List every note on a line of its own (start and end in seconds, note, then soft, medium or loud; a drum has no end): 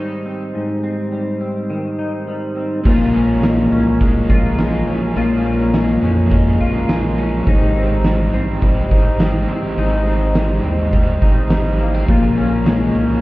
0.00 0.53 G#2 medium
0.00 1.69 D#3 medium
0.00 1.11 G3 soft
0.00 2.81 G3 medium
0.00 0.24 C4 soft
0.00 2.81 C4 medium
0.00 1.97 D#4 soft
0.00 2.81 D#4 medium
0.00 2.81 G4 medium
0.00 2.81 C5 medium
0.26 0.82 C4 medium
0.55 2.85 G#2 medium
0.83 1.40 C4 medium
1.12 2.26 G3 medium
1.41 2.55 C4 soft
1.70 2.91 D#3 medium
1.99 2.86 D#4 medium
2.27 2.91 G3 medium
2.56 2.91 C4 medium
2.84 3.68 A#1 loud
2.84 4.00 A#2 medium
2.84 5.15 A#2 medium
2.84 3.98 F3 medium
2.84 4.01 G#3 medium
2.84 7.43 F4 medium
2.84 4.28 F4 medium
2.84 7.43 A#4 medium
2.84 7.43 C#5 medium
2.84 13.21 A#5 medium
2.84 kick loud
2.84 crash medium
2.88 4.01 C#4 medium
2.88 4.03 G#4 medium
3.14 3.71 C#4 medium
3.14 ride soft
3.43 4.00 G#3 medium
3.43 snare loud
3.43 ride medium
3.43 tambourine medium
3.72 4.27 C2 medium
3.72 4.86 C#4 medium
3.72 ride soft
3.99 4.56 F3 medium
3.99 4.58 G#3 medium
3.99 4.59 C#4 medium
3.99 4.61 G#4 medium
3.99 kick loud
3.99 ride medium
4.30 4.84 A#1 loud
4.30 5.16 F4 medium
4.30 kick loud
4.30 ride soft
4.57 5.15 F3 medium
4.57 5.74 G#3 medium
4.57 5.16 G#3 medium
4.57 5.16 C#4 medium
4.57 5.17 G#4 medium
4.57 snare loud
4.57 ride medium
4.57 tambourine medium
4.87 5.44 C#4 medium
4.87 ride soft
5.15 5.99 A#1 loud
5.15 5.73 A#2 medium
5.15 7.47 A#2 medium
5.15 5.71 F3 medium
5.15 5.74 G#3 medium
5.15 5.74 C#4 loud
5.15 6.59 F4 medium
5.15 5.76 G#4 loud
5.15 ride medium
5.45 6.01 C#4 medium
5.45 ride soft
5.73 6.29 F3 medium
5.73 6.31 G#3 medium
5.73 6.32 C#4 medium
5.73 6.34 G#4 medium
5.73 snare loud
5.73 ride medium
5.73 tambourine medium
6.02 6.57 F2 loud
6.02 7.17 C#4 medium
6.02 ride soft
6.30 6.87 F3 medium
6.30 6.89 G#3 medium
6.30 6.89 C#4 medium
6.30 6.91 G#4 medium
6.30 kick loud
6.30 ride medium
6.60 7.43 A#1 loud
6.60 7.47 F4 medium
6.60 ride medium
6.88 7.44 F3 medium
6.88 7.45 G#3 medium
6.88 8.04 G#3 medium
6.88 7.48 C#4 medium
6.88 7.50 G#4 medium
6.88 snare loud
6.88 ride medium
6.88 tambourine medium
7.18 7.53 C#4 medium
7.18 ride soft
7.45 8.29 G#1 loud
7.45 9.77 G#2 medium
7.45 8.60 G#3 medium
7.45 8.61 C4 medium
7.45 8.90 D#4 medium
7.45 12.05 G4 medium
7.45 12.05 C5 medium
7.45 12.05 D#5 medium
7.45 kick loud
7.45 ride medium
7.49 8.62 D#4 loud
7.49 8.64 G4 loud
7.76 8.33 C4 medium
7.76 ride soft
8.04 8.61 G3 medium
8.04 snare loud
8.04 ride medium
8.04 tambourine medium
8.33 8.88 A#1 loud
8.33 9.48 C4 medium
8.33 ride soft
8.61 9.19 G3 medium
8.61 9.18 G#3 medium
8.61 9.19 C4 medium
8.61 9.20 D#4 medium
8.61 9.21 G4 medium
8.61 kick loud
8.61 ride medium
8.91 9.46 G#1 medium
8.91 9.77 D#4 medium
8.91 kick loud
8.91 ride medium
9.18 10.34 G3 medium
9.18 9.76 G#3 medium
9.18 9.76 C4 medium
9.18 9.77 D#4 medium
9.18 9.78 G4 medium
9.18 snare loud
9.18 ride medium
9.18 tambourine medium
9.49 10.06 C4 medium
9.49 ride soft
9.76 10.60 G#1 loud
9.76 12.08 G#2 medium
9.76 10.33 G#3 medium
9.76 10.34 C4 medium
9.76 10.36 D#4 loud
9.76 11.21 D#4 medium
9.76 10.36 G4 loud
9.76 ride medium
10.07 10.64 C4 medium
10.07 ride soft
10.34 10.92 G3 medium
10.34 10.91 G#3 medium
10.34 10.92 C4 medium
10.34 10.93 D#4 medium
10.34 10.94 G4 medium
10.34 snare loud
10.34 ride medium
10.34 tambourine medium
10.64 11.19 D#2 loud
10.64 11.80 C4 medium
10.64 ride soft
10.92 11.50 G3 medium
10.92 11.49 G#3 medium
10.92 11.49 C4 medium
10.92 11.51 D#4 medium
10.92 11.52 G4 medium
10.92 kick loud
10.92 ride medium
11.22 12.04 G#1 medium
11.22 12.09 D#4 medium
11.22 kick loud
11.22 ride soft
11.49 12.14 G3 medium
11.49 12.08 G#3 medium
11.49 12.08 C4 medium
11.49 12.09 D#4 medium
11.49 12.09 G4 medium
11.49 snare loud
11.49 ride medium
11.49 tambourine medium
11.79 11.94 A#3 medium
11.79 ride soft
11.94 12.14 C4 medium
12.07 12.91 A#1 loud
12.07 12.65 A#2 medium
12.07 13.21 A#2 medium
12.07 12.63 F3 loud
12.07 12.66 G#3 loud
12.07 12.66 C#4 medium
12.07 13.21 F4 medium
12.07 12.68 G#4 loud
12.07 13.21 A#4 medium
12.07 13.21 C#5 medium
12.07 kick loud
12.07 ride medium
12.37 12.94 C#4 medium
12.37 ride soft
12.64 13.21 F3 medium
12.64 13.21 G#3 medium
12.64 13.21 C#4 medium
12.64 snare loud
12.64 ride medium
12.64 tambourine medium
12.68 13.21 G#4 medium
12.95 13.21 C2 loud
12.95 13.21 C#4 medium
12.95 ride soft